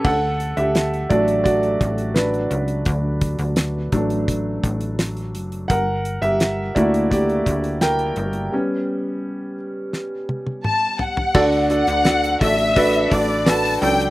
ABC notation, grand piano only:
X:1
M:4/4
L:1/16
Q:1/4=85
K:D
V:1 name="Grand piano"
[Af]3 [Ge]3 [Fd]2 [Fd]4 [DB]3 z | z16 | [_Bf]3 [Ge]3 [Fd]2 [Gd]4 [Bg]3 z | z16 |
[DFAd]2 [DFAd]2 [DFAd]2 [DFAd]2 [DFAB]2 [DFAd]2 [DFAB]2 [F,DAd]2 |]
V:2 name="Grand piano"
z6 [F,A,D]6 z4 | z6 [F,A,D]8- [F,A,D]2 | z6 [A,_B,E]2 z8 | [G,B,C]6 z8 z2 |
D,6 z8 z2 |]